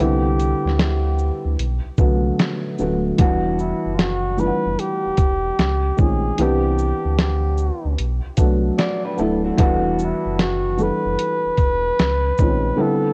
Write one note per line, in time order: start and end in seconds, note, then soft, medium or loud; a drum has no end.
0.00 0.54 C2 loud
0.00 1.51 D3 loud
0.00 1.52 G3 medium
0.00 1.52 B3 medium
0.00 1.53 C4 medium
0.00 1.53 E4 loud
0.00 0.80 G4 loud
0.40 closed hi-hat soft
0.40 shaker soft
0.65 1.31 D2 loud
0.65 snare soft
0.79 1.56 G4 medium
0.79 snare loud
0.79 closed hi-hat medium
1.18 shaker soft
1.45 1.57 D2 loud
1.59 1.81 B1 loud
1.59 closed hi-hat medium
1.86 1.91 C2 medium
1.97 2.32 C2 medium
1.97 2.75 D3 medium
1.97 2.75 F#3 medium
1.97 2.75 A3 medium
1.97 2.76 B3 medium
1.97 2.76 F#4 medium
1.97 kick medium
1.97 shaker soft
2.39 snare loud
2.39 closed hi-hat medium
2.78 3.12 D1 medium
2.78 3.17 D3 medium
2.78 3.17 F#3 medium
2.78 3.18 A3 medium
2.78 3.18 B3 medium
2.78 3.18 F#4 medium
2.78 shaker soft
3.18 3.73 E1 loud
3.18 4.33 E3 loud
3.18 4.34 G3 medium
3.18 4.34 B3 medium
3.18 4.34 D4 medium
3.18 4.35 F#4 loud
3.18 kick loud
3.18 closed hi-hat loud
3.59 3.96 E4 medium
3.59 shaker soft
3.86 4.51 F#1 medium
3.95 4.02 F4 medium
3.99 4.41 F#4 loud
3.99 snare loud
3.99 closed hi-hat medium
4.37 5.58 E3 medium
4.37 5.58 G3 medium
4.37 5.58 B3 medium
4.37 5.59 D4 medium
4.37 4.48 F4 medium
4.37 4.81 B4 loud
4.37 shaker soft
4.46 5.62 F#5 medium
4.66 4.77 F#1 medium
4.79 6.02 G4 loud
4.79 closed hi-hat medium
5.06 5.11 E1 soft
5.17 5.52 E1 medium
5.17 kick medium
5.17 closed hi-hat soft
5.17 shaker soft
5.59 5.92 C#2 medium
5.59 snare medium
5.59 closed hi-hat medium
5.97 6.32 A#1 medium
5.97 6.36 D#3 medium
5.97 6.36 G#3 medium
5.97 6.37 C4 medium
5.97 6.37 C#4 medium
5.97 6.38 F4 medium
5.97 6.42 G#4 medium
5.97 kick medium
5.97 shaker soft
6.38 6.93 C2 loud
6.38 7.92 E3 medium
6.38 7.92 B3 medium
6.38 7.93 C4 medium
6.38 7.93 D4 medium
6.38 7.20 G4 medium
6.38 7.93 G4 loud
6.38 closed hi-hat medium
6.78 shaker soft
7.05 7.71 D2 medium
7.19 7.96 G4 medium
7.19 snare loud
7.19 closed hi-hat medium
7.57 shaker soft
7.85 7.96 D2 medium
7.98 8.21 B1 loud
7.98 closed hi-hat medium
8.25 8.31 C2 soft
8.37 8.71 C2 medium
8.37 9.15 F#3 medium
8.37 9.15 A3 medium
8.37 9.15 B3 medium
8.37 9.16 D4 medium
8.37 9.16 F#4 medium
8.37 kick medium
8.37 closed hi-hat medium
8.37 shaker medium
8.78 9.04 F#4 medium
8.78 9.03 D5 medium
8.78 snare medium
8.78 closed hi-hat medium
9.05 9.18 D4 medium
9.05 9.18 B4 medium
9.17 9.52 D1 medium
9.17 9.56 F#3 medium
9.17 9.57 A3 medium
9.17 9.57 B3 medium
9.17 9.57 D4 medium
9.17 9.58 E4 loud
9.17 9.44 A4 medium
9.17 shaker soft
9.45 9.83 A3 medium
9.45 9.83 F#4 medium
9.58 10.13 E1 loud
9.58 10.73 E3 loud
9.58 10.74 G3 loud
9.58 10.74 B3 loud
9.58 10.74 D4 loud
9.58 10.75 F#4 loud
9.58 kick loud
9.58 closed hi-hat medium
9.99 shaker soft
10.03 10.38 E4 medium
10.26 10.91 F#1 loud
10.39 10.84 F#4 loud
10.39 snare loud
10.39 closed hi-hat medium
10.77 11.98 E3 medium
10.77 11.98 G3 medium
10.77 11.99 B3 medium
10.77 11.99 D4 medium
10.77 11.99 A4 medium
10.77 shaker soft
10.83 12.83 B4 loud
11.06 11.17 F#1 medium
11.19 closed hi-hat medium
11.45 11.51 E1 medium
11.57 11.91 E1 medium
11.57 kick medium
11.57 closed hi-hat medium
11.57 shaker medium
11.99 12.32 C#2 medium
11.99 snare loud
11.99 closed hi-hat medium
12.38 12.72 A#1 medium
12.38 12.77 D#3 medium
12.38 12.77 G#3 medium
12.38 12.77 C4 medium
12.38 12.78 C#4 medium
12.38 12.78 F4 medium
12.38 kick medium
12.38 shaker soft
12.77 13.13 D3 loud
12.77 13.13 G3 medium
12.77 13.13 B3 medium
12.77 13.13 C4 medium
12.77 13.13 E4 loud
12.81 13.13 A4 loud